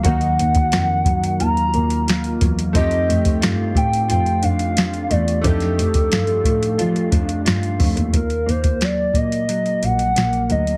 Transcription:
<<
  \new Staff \with { instrumentName = "Soft synth lead" } { \time 4/4 \key ees \lydian \tempo 4 = 89 ges''2 bes''4. r8 | ees''4 r8 g''8 g''8 f''4 d''8 | a'2.~ a'8 r8 | bes'8 c''8 d''8 ees''4 ges''4 ees''8 | }
  \new Staff \with { instrumentName = "Synth keys" } { \time 4/4 \key ees \lydian <bes ees' ges'>1 | <a c' ees' g'>1 | <a d' ees' g'>1 | r1 | }
  \new Staff \with { instrumentName = "Clean electric guitar" } { \time 4/4 \key ees \lydian <ees ges bes>4. ges8 f'8 bes8 f'8 ges8 | r8 a8 f'8 a8 f'8 d'8 f'8 a8 | f,8 a8 f'8 a8 f'8 d'8 f'8 a8 | r8 bes8 ges8 bes8 ges4 bes8 ges8 | }
  \new Staff \with { instrumentName = "Double bass" } { \clef bass \time 4/4 \key ees \lydian ees,8 ees,8 f,8 ges,8 ees,8 ees,4 e,8 | f,8 f,8 g,8 a,8 f,8 f,4 e,8 | f,8 f,8 g,8 a,8 f8 f,8 g,16 r16 f,16 ees,16 | ees,8 ees,4 bes,4 bes,,8 bes,,8 d,8 | }
  \new DrumStaff \with { instrumentName = "Drums" } \drummode { \time 4/4 <hh bd>16 hh16 hh16 <hh bd>16 <hh sn>8 <hh bd>16 hh16 hh16 hh16 hh16 hh16 <hh sn>16 hh16 <hh bd>16 hh16 | <hh bd>16 hh16 hh16 <hh bd>16 <hh sn>8 <hh bd>16 hh16 hh16 hh16 hh16 hh16 <hh sn>16 hh16 hh16 hh16 | <hh bd>16 <hh sn>16 hh16 <hh bd>16 <hh sn>16 hh16 <hh bd>16 hh16 hh16 hh16 <hh bd>16 hh16 <hh sn>16 hh16 <hho bd>16 hh16 | <hh bd>16 hh16 hh16 <hh bd>16 <hh sn>8 <hh bd>16 hh16 hh16 hh16 hh16 hh16 <hh sn>16 hh16 hh16 hh16 | }
>>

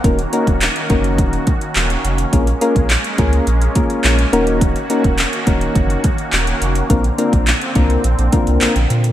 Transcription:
<<
  \new Staff \with { instrumentName = "Synth keys" } { \time 4/4 \key ees \dorian \tempo 4 = 105 <bes des' ees' ges' bes'>16 r16 <bes des' ees' ges' bes'>8 r8 <bes des' ees' ges' bes'>4 r4. | <bes des' f' aes' bes'>16 r16 <bes des' f' aes' bes'>8 r8 <bes des' f' aes' bes'>8 r8 <bes des' f' aes' bes'>8 r8 <bes des' ees' ges' bes'>8~ | <bes des' ees' ges' bes'>8 <bes des' ees' ges' bes'>8 r8 <bes des' ees' ges' bes'>4 r4. | <bes c' d' f' bes'>16 r16 <bes c' d' f' bes'>8 r8 <bes c' d' f' bes'>8 r8 <bes c' d' f' bes'>8 r4 | }
  \new Staff \with { instrumentName = "Supersaw synth" } { \time 4/4 \key ees \dorian << { <ees ges'>1 | aes2.~ aes8 <ees ges'>8~ | <ees ges'>1 | <d c'>1 | } \\ { <bes des'>1 | bes1~ | bes1~ | bes1 | } >> }
  \new Staff \with { instrumentName = "Sub bass" } { \clef bass \time 4/4 \key ees \dorian ees,,8 r16 ees,,8 r16 ges,,8 ees,,8 r8 ees,,8 f,,8 | bes,,8 r16 bes,,8 r16 des,8 bes,,8 r8 bes,,8 ees,,8~ | ees,,8 r16 ees,,8 r16 ees,,8 ges,,8 r8 ees,,8 f,,8 | bes,,8 r16 bes,,8 r16 c,8 bes,,16 bes,,16 r16 c,16 bes,,16 bes,,16 bes,8 | }
  \new DrumStaff \with { instrumentName = "Drums" } \drummode { \time 4/4 <hh bd>16 hh16 hh16 <hh bd>16 <hc hh>16 hh16 <hh bd>16 hh16 <hh bd>16 hh16 <hh bd>16 hh16 <hc hh>16 hh16 hh16 hh16 | <hh bd>16 hh16 hh16 <hh bd>16 <hc hh>16 hh16 <hh bd>16 hh16 hh16 hh16 <hh bd>16 hh16 <hc hh>16 hh16 hh16 hh16 | <hh bd>16 hh16 hh16 <hh bd>16 <hc hh>16 hh16 <hh bd>16 hh16 <hh bd>16 hh16 <hh bd>16 hh16 <hc hh>16 hh16 hh16 hh16 | <hh bd>16 hh16 hh16 <hh bd>16 <hc hh>16 hh16 <hh bd>16 hh16 hh16 hh16 <hh bd>16 hh16 <hc hh>16 hh16 hh16 hh16 | }
>>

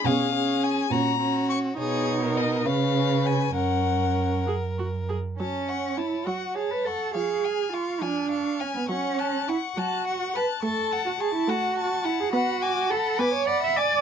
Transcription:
<<
  \new Staff \with { instrumentName = "Violin" } { \time 6/8 \key fis \major \tempo 4. = 69 eis''4 gis''8 ais''4 cis'''8 | cis''4 dis''8 eis''4 gis''8 | fis''4. r4. | \key fis \minor a''8 cis'''8 a''8 cis'''8 a''8 cis'''8 |
cis'''8 eis'''8 cis'''8 eis'''8 cis'''8 eis'''8 | cis'''8 fis'''8 cis'''8 fis'''8 cis'''8 fis'''8 | cis'''8 a''8 cis'''8 a''8 cis'''8 a''8 | b''8 d'''8 b''8 d'''8 b''8 d'''8 | }
  \new Staff \with { instrumentName = "Violin" } { \time 6/8 \key fis \major gis'8 gis'4 fis'8 fis'4 | gis'8. ais'8. b'4. | ais'2~ ais'8. r16 | \key fis \minor cis''8 fis''8 cis''8 fis''8 cis''8 fis''8 |
eis''8 gis''8 eis''8 gis''8 eis''8 gis''8 | fis''8 a''8 fis''8 a''8 fis''8 a''8 | a''8 fis''8 a''8 fis''8 a''8 fis''8 | fis''8 gis''8 fis''8 gis''8 fis''8 gis''8 | }
  \new Staff \with { instrumentName = "Cello" } { \time 6/8 \key fis \major b,4. ais,4. | b,4. cis4. | fis,2~ fis,8 r8 | \key fis \minor cis'4 e'8 fis'8 gis'16 b'16 a'8 |
gis'4 eis'8 d'4 cis'16 b16 | cis'4 e'8 fis'4 b'8 | a'8. fis'16 gis'16 e'16 fis'4 e'16 gis'16 | fis'4 a'8 b'16 cis''16 d''16 e''16 d''8 | }
  \new Staff \with { instrumentName = "Viola" } { \time 6/8 \key fis \major cis'8 cis'4 cis'8 cis'4 | dis'4. cis'4. | cis'4. gis'8 fis'8 gis'8 | \key fis \minor fis4. fis4. |
eis4. eis4. | fis4. fis4. | a4. a4. | b4. b4. | }
>>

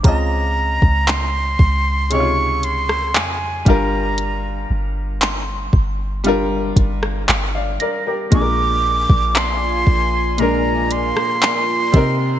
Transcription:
<<
  \new Staff \with { instrumentName = "Synth bell" } { \time 4/4 \key bes \mixolydian \tempo 4 = 58 <bes'' d'''>4. r2 r8 | r4 c'''4. r4 bes'''8~ | bes'''8 r2. r8 | }
  \new Staff \with { instrumentName = "Flute" } { \time 4/4 \key bes \mixolydian bes''4 c'''4 des'''8 c'''8 aes''8 bes''8~ | bes''8 r2. r8 | d'''4 c'''4 bes''8 c'''4. | }
  \new Staff \with { instrumentName = "Analog synth pad" } { \time 4/4 \key bes \mixolydian << { r1 | r1 | <f' d'' aes''>2.~ <f' d'' aes''>8 <ees' ees'' bes''>8 | } \\ { r1 | r1 | bes'1 | } >> }
  \new Staff \with { instrumentName = "Grand piano" } { \time 4/4 \key bes \mixolydian << { r1 | r2. r16 <d'' f''>16 <bes' d''>16 <g' bes'>16~ | <g' bes'>16 r2. r8. | } \\ { <des c' f' ees''>4. r8 <c des ees' f' des''>4. <g d' f' bes'>8~ | <g d' f' bes'>4 r4 <g d' f' bes'>4. r8 | <bes, aes d' aes' bes'>4. r8 <bes, aes d' bes'>4. <c c' ees' bes'>8 | } >> }
  \new Staff \with { instrumentName = "808-style bass" } { \clef bass \time 4/4 \key bes \mixolydian des,8. des,8. des,4. f,8 g,,8~ | g,,8 g,,4 g,,4 g,,8 g,,8 r8 | bes,,8. bes,,8. bes,,4~ bes,,16 r8. c8 | }
  \new DrumStaff \with { instrumentName = "Drums" } \drummode { \time 4/4 <hh bd>8. bd16 <hc hh>8 bd8 hh8 hh16 ss16 <hc hh>8 <hh bd>8 | hh4 <hc hh>8 bd8 hh8 <hh bd>16 ss16 <hc hh>8 hh8 | <hh bd>8. bd16 <hc hh>8 bd8 hh8 hh16 ss16 <hc hh>8 <hh bd>8 | }
>>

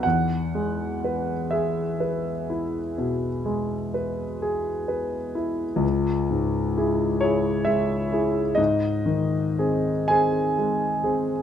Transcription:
\new Staff \with { instrumentName = "Grand piano" } { \time 12/8 \key e \major \tempo 4. = 42 << { fis''4. e''1 r8 | \key cis \minor r4. cis''8 e''4 dis''4. gis''4. | } \\ { e,8 gis8 b'8 gis'8 b'8 e'8 b,8 gis8 b'8 gis'8 b'8 e'8 | cis,8 gis,8 <e' gis'>8 <e' gis'>8 gis8 <e' gis'>8 gis,8 dis8 <bis gis'>8 <bis gis'>8 gis8 <bis gis'>8 | } >> }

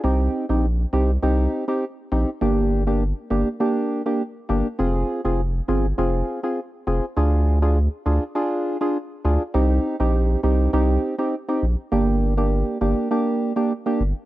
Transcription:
<<
  \new Staff \with { instrumentName = "Synth stab" } { \time 4/4 \key c \minor \tempo 4 = 101 <c' ees' g'>8. <c' ees' g'>16 r8 <c' ees' g'>16 r16 <c' ees' g'>8. <c' ees' g'>16 r8 <c' ees' g'>16 r16 | <bes d' g'>8. <bes d' g'>16 r8 <bes d' g'>16 r16 <bes d' g'>8. <bes d' g'>16 r8 <bes d' g'>16 r16 | <c' f' aes'>8. <c' f' aes'>16 r8 <c' f' aes'>16 r16 <c' f' aes'>8. <c' f' aes'>16 r8 <c' f' aes'>16 r16 | <d' f' aes'>8. <d' f' aes'>16 r8 <d' f' aes'>16 r16 <d' f' aes'>8. <d' f' aes'>16 r8 <d' f' aes'>16 r16 |
<c' ees' g'>8. <c' ees' g'>8. <c' ees' g'>8 <c' ees' g'>8. <c' ees' g'>16 r16 <c' ees' g'>16 r8 | <bes d' g'>8. <bes d' g'>8. <bes d' g'>8 <bes d' g'>8. <bes d' g'>16 r16 <bes d' g'>16 r8 | }
  \new Staff \with { instrumentName = "Sub bass" } { \clef bass \time 4/4 \key c \minor c,8 r16 bes,,8. c,8 c,8 r4 bes,,16 r16 | g,,4~ g,,16 r16 g,,16 r4. r16 g,,16 r16 | f,,8 r16 f,,8. g,,8 f,,8 r4 f,,16 r16 | d,4~ d,16 r16 d,16 r4. r16 d,16 r16 |
c,8 r16 bes,,8. c,8 c,8 r4 bes,,16 r16 | g,,4~ g,,16 r16 g,,16 r4. r16 g,,16 r16 | }
>>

